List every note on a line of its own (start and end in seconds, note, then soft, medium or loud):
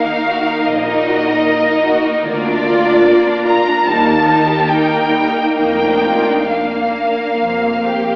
0.00 3.81 A#3 soft
0.00 2.24 D#4 soft
0.00 3.81 A#4 soft
0.00 0.67 F5 soft
0.08 0.27 D#4 soft
0.28 0.48 F#4 soft
0.48 0.67 D#4 soft
0.66 1.33 A#1 soft
0.66 1.33 A#2 soft
0.66 0.86 A#3 soft
0.66 2.24 D#5 medium
0.90 1.08 D#4 soft
1.09 1.28 F#4 soft
1.29 1.47 D#4 soft
1.47 1.66 A#3 soft
1.66 1.85 D#4 soft
1.86 2.05 F#4 soft
2.06 2.25 D#4 soft
2.24 2.91 D2 soft
2.24 2.92 D2 soft
2.24 2.44 A#3 soft
2.24 3.85 F4 soft
2.24 3.46 D5 medium
2.46 2.66 D4 soft
2.66 2.86 F4 soft
2.87 3.06 D4 soft
3.08 3.26 A#3 soft
3.27 3.46 D4 soft
3.46 3.66 F4 soft
3.46 3.85 A#5 medium
3.66 3.86 D4 soft
3.85 4.55 D#2 soft
3.85 4.04 G3 soft
3.85 8.16 A#3 soft
3.85 6.50 D#4 soft
3.85 6.36 A#4 soft
3.85 4.70 A5 medium
4.06 4.26 A#3 soft
4.27 4.48 D#4 soft
4.48 4.69 G4 soft
4.70 4.91 D#4 soft
4.70 5.57 G5 medium
4.91 5.13 A#3 soft
5.13 5.36 G3 soft
5.36 5.57 A#3 soft
5.58 6.34 F1 soft
5.58 6.34 F2 soft
5.58 5.80 A#3 soft
5.58 6.47 G5 medium
5.84 6.05 D4 soft
6.05 6.27 F4 soft
6.28 6.50 D4 soft
6.49 7.82 A#3 soft
6.49 7.40 D4 soft
6.49 8.16 F5 soft
7.40 8.16 F1 soft
7.40 8.16 F2 soft
7.40 8.16 C4 soft
7.86 8.16 G4 soft